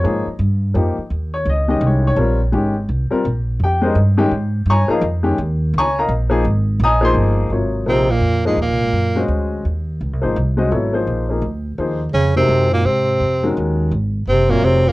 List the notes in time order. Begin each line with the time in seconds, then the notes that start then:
Already playing: C#5
0.04 G#2 F3 A#3 D#4 G#4
0.27 muted upright bass stroke
0.39 G2
0.74 F2 F3 A#3 D#4 G4
0.98 muted upright bass stroke
1.10 D#2
1.34 C#5
1.46 C#2
1.50 D#5
1.68 D#3 G#3 C#4 G4 D#5
1.81 C2
1.87 C#5
2.07 C#5
2.16 A#1 G3 C4 F4 A#4
2.52 G#1 D#3 G#3 C#4 G4
2.88 C2
3.10 G3 C4 F4 A#4, muted upright bass stroke
3.25 A#1
3.60 F2 G5
3.64 G4
3.81 G#3 C#4 D#4 G4 G#4 A#4 C5 D#5
3.95 G2
4.17 D#3 G#3 C#4 G4
4.31 G#2
4.66 G2
4.70 C#5 G#5 A#5 C#6
4.88 F3 A#3 D#4 G#4 A#4 D#5 F5 A#5, muted upright bass stroke
5.01 F2
5.23 D#3 G#3 C#4 G4
5.38 D#2
5.74 C#2
5.78 C#5 G#5 A#5 C#6
5.99 A#4 D#5 F5 A#5
6.09 A#1
6.30 F3 A#3 D#4 G#4
6.45 G#1
6.80 A#1
6.84 D#5 G#5 A#5 D#6
7.01 F3 A#3 D#4 G#4 C5 C6
7.15 G1
7.50 G#1 C3 F#3 F4 A#4 C#5
7.86 A#1 C3 F3 A#3 C4 D#4 G#4 A#4
8.10 A#2 A#3
8.20 F2
8.45 G#2 F3 G#3 A#3 D#4 G#4 D#5
8.57 D#2 A#2
8.62 A#3
8.69 C2
8.81 G#1
8.92 F#2
9.16 G#3 C#4 F#4 C5 D#5
9.28 D2
9.65 D#2
10.01 C#2
10.13 C2
10.22 G#1 F3 A#3 D#4 G#4 C5
10.36 C2
10.57 G#3 C#4 F#4 C5 D#5
10.71 G#1 F#3 B3 E4 A4 C#5
10.93 F3 A#3 D#4 G#4 C5
11.07 A#1
11.29 F3 A#3 D#4 G#4 A#4
11.42 D2
11.78 D#2 F3 A#3 D#4 G#4 C5
12.12 F2 C#3 C#4
12.36 C3 D#3 G#3 C4 F#4 A#4
12.48 F#2
12.71 A#2 A#3
12.85 G#2 C3 C4
13.20 F2
13.43 D#3 G#3 C#4 F#4 A#4
13.57 D#2
13.91 G#1
14.27 F#1 C3 C4
14.49 A#2 C3 F#3 A#3 F4 A#4 C#5
14.62 F1 C3 C4
14.86 A#2 A#3